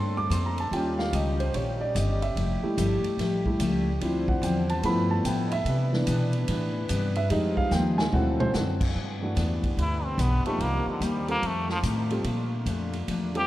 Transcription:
Already playing: G2 D3 A3 A#3 C4 D4 A4 C5 C6
0.17 D6
0.30 F2 A#3 D4 A4 C5 C6, hi-hat pedal, ride
0.46 A#5
0.58 A5, ride
0.71 D#2 D#3 G3 C#4 D#4 F4 G4 G5, ride
0.99 F5, snare
1.13 C#2 D#3 G3 C#4 F4 D#5, hi-hat pedal, ride
1.40 C5, ride
1.53 A#1 D#3 G3 C#4 F4 C#5, ride
1.81 D5
1.94 G1 D#3 G3 C#4 F4 D#5, hi-hat pedal, ride
2.22 E5, ride
2.35 F1 F3 A3 E4 G4, ride
2.62 G3 A3 E4, muted upright bass stroke
2.77 G1 F3 A3 E4 G4, hi-hat pedal, ride
3.04 muted upright bass stroke, ride
3.17 A1 F3 A3 E4, snare, ride
3.22 G4
3.46 G3 A3 E4, kick
3.59 C#2 F3 A3 E4 G4, hi-hat pedal, ride
4.00 D2 D3 F3 C4 D4 E4 F4 C5, ride
4.05 E4
4.28 F#5, kick
4.42 E2 D3 F3 C4 G5, hi-hat pedal, ride
4.46 E4
4.69 A5, ride
4.83 G2 F3 A3 B3 E4 A4 B5, ride
5.11 A5
5.25 G2 A2 F3 B3 E4 G5, hi-hat pedal, ride
5.48 D#5, ride
5.52 E5
5.65 C3 E3 B3 D4 B4, ride
5.93 E3 B3 D4, snare
6.06 B2 C3 E3 B3 D4, hi-hat pedal, ride
6.33 ride
6.47 A2 C3 E3 B3 D4, ride
6.88 G2 C3 E3 B3 D4, hi-hat pedal, ride
7.15 E5, ride
7.30 F2 F3 G3 G#3 C4 D#4 F4 G#4 D#5, ride
7.57 F5, kick
7.71 D#2 F3 C4 D#4 G#4 G5, snare, hi-hat pedal
7.98 G#5, snare
8.12 D2 D3 F#3 C4 D4 E4 F#4 A4 F#5, mid tom
8.16 A4
8.40 C5, mid tom
8.54 F#2 D3 C4 F#4 A4, snare, hi-hat pedal
8.81 kick, crash
8.94 G2 E3 G3 B3 D4
9.22 E3 A3 D4 F#4
9.35 E2 G2 E3 B3 D4, snare, hi-hat pedal, ride
9.64 kick, ride
9.77 D2 G2 E3 B3, ride
9.81 D4 E4
10.04 C4
10.18 B1 G2 E3 B3 D4, hi-hat pedal, ride
10.46 F3 A3 A#3 D#4 G4, ride
10.59 C2 C3 D#3 G3 A#3 C4, ride
10.63 D#4
10.86 D3, muted upright bass stroke
11.00 D#2 C3 G3 A#3 D#4, hi-hat pedal, ride
11.05 G3
11.28 G3 A#3 C4 F4 A4, ride
11.42 F2 D#3 A3 C4 F4, ride
11.46 A3
11.69 F3, snare
11.83 F2 A2 D#3 A3 C4, hi-hat pedal, ride
12.10 G3 C4 F4 A4, ride
12.24 A#2 D3 F3 A3 A#3 D4, ride
12.66 F2 A#2 F3 A3 D4, hi-hat pedal, ride
12.93 ride
13.07 E2 A#2 F3 A3 D4, ride
13.35 G3 C4 F4 G4 A4, ride

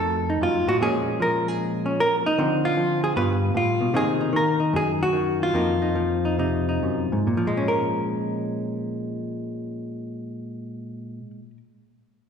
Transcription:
Already playing: F2 A3 D#4 A4
0.30 D#4
0.41 F#2 F4
0.67 A2 F#4
0.81 A#2 F3 G#3 C#4 G#4
1.20 F3 A#4
1.48 G#4
1.86 C#4
2.00 A#4
2.26 D#4
2.38 D3 F3 C4
2.65 F4
2.77 F3
3.04 G#4
3.16 G2 G3 B3 F4 B4
3.54 A2 F4
3.81 B2
3.94 C3 D#3 A#3 D#4 G#4
4.21 D#4
4.33 D#3 A#4
4.60 D#4
4.73 F#2 G#4
5.03 F#4
5.13 D#3
5.43 F4
5.54 F2 F3 A#3 D#4
5.82 D#4
5.95 F3
6.25 D#4
6.39 C3 D#4
6.69 D#4
6.83 F#2
7.12 G#2
7.27 A#2
7.37 F3
7.47 G#3
7.57 C#4
7.68 A#4

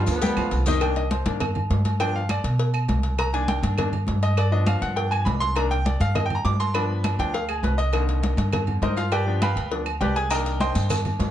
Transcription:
Already playing: F3 F4 F5
0.07 D2 D3 F3 B3, cowbell, high conga, high timbale, low agogo, maracas
0.22 G3 G4 G5, cowbell, high conga, maracas
0.37 D2 F3 F4 F5, high conga, low timbale, low agogo, claves, maracas
0.51 C2, cowbell, low agogo, maracas
0.66 D#3 D#4 D#5, cowbell, low conga, low timbale, maracas
0.81 D#3 A#3 D4 G5, cowbell, high conga, low agogo, claves
0.96 D#5, cowbell, high conga
1.11 C5, cowbell, high conga, low timbale, low agogo
1.26 G2 D#3 A#3 D4, cowbell, high conga, low agogo
1.40 cowbell, high conga, low conga, low agogo, claves
1.55 high conga, low conga, low agogo
1.70 G2, cowbell, high conga, low timbale
1.85 cowbell, high conga, low agogo
2.00 F3 B3 D4 G5, cowbell, low agogo, claves
2.15 F5, high conga
2.29 D5, cowbell, high conga, low timbale, low agogo, claves
2.44 B2, cowbell, high conga, low agogo
2.58 cowbell, high conga
2.74 high conga, low agogo, claves
2.88 C2, cowbell, high conga, low timbale, low agogo
3.03 cowbell
3.18 A#5, cowbell, high conga, low agogo, claves
3.33 D#3 A#3 D4 G#5, cowbell, high conga
3.48 G5, cowbell, high conga, low timbale, low agogo
3.63 G2, cowbell, high conga, low agogo
3.78 D#3 A#3 D4, cowbell, high conga, low conga, low agogo, claves
3.93 high conga, low conga, low agogo
4.07 G2, cowbell, high conga, low timbale
4.23 D#5, cowbell, low agogo
4.37 D5, cowbell, high conga, low agogo, claves
4.52 F3 B3 D4 D#5, high conga
4.67 F5, cowbell, high conga, low timbale, low agogo, claves
4.82 G2 F#5, cowbell, high conga, low agogo
4.96 G5, cowbell, high conga
5.11 G#5, high conga, low agogo, claves
5.25 C2 B5, cowbell, high conga, low timbale, low agogo
5.40 C6, cowbell
5.56 D#3 A#3 D4 A#5, cowbell, high conga, low agogo, claves
5.71 G5, cowbell, high conga
5.85 D5, cowbell, high conga, low timbale, low agogo
6.00 G2 F5, cowbell, high conga, low agogo
6.15 D#5, cowbell, high conga, low conga, low agogo, claves
6.26 G5
6.30 high conga, low conga, low agogo
6.35 A#5
6.44 G2 D6, cowbell, high conga, low timbale
6.60 C6, cowbell, low agogo
6.74 F3 B3 D4 B5, cowbell, high conga, low agogo, claves
6.90 high conga
7.04 cowbell, high conga, low timbale, low agogo, claves
7.19 D2 F3 B3 D4 G5, cowbell, high conga, low agogo
7.34 F5, cowbell, high conga
7.49 G#4, high conga, low agogo, claves
7.63 C2 B4, cowbell, high conga, low timbale, low agogo
7.78 D#5, cowbell
7.93 D3 D#3 A#3, cowbell, high conga, low agogo, claves
8.09 cowbell, high conga
8.23 cowbell, high conga, low timbale, low agogo
8.37 G2, cowbell, high conga, low agogo
8.53 cowbell, high conga, low conga, low agogo, claves
8.67 high conga, low conga, low agogo
8.82 G2 D#4 A#4 C5 D#5, cowbell, high conga, low timbale
8.97 F4 F5, cowbell, low agogo
9.12 G4 B4 D5 G5, cowbell, high conga, low agogo, claves
9.26 F3 B3 D4, high conga
9.42 B4 F5 G5 B5, cowbell, high conga, low timbale, low agogo, claves
9.56 D2, cowbell, high conga, low agogo
9.72 F3 B3 D4, cowbell, high conga
9.86 high conga, low agogo, claves
10.01 C2 G4 B4 D5 G5, cowbell, high conga, low timbale, low agogo
10.16 G#4 G#5, cowbell
10.30 D#3 A#3 D4 A#4 D#5 G5 A#5, cowbell, high conga, low agogo, claves, maracas
10.46 cowbell, high conga, maracas
10.60 C5 D#5 G5 C6, cowbell, high conga, low timbale, low agogo, maracas
10.75 G2, cowbell, high conga, low agogo, maracas
10.90 cowbell, high conga, low conga, low agogo, claves, maracas
11.05 high conga, low conga, low agogo
11.20 G2, cowbell, high conga, low timbale, maracas

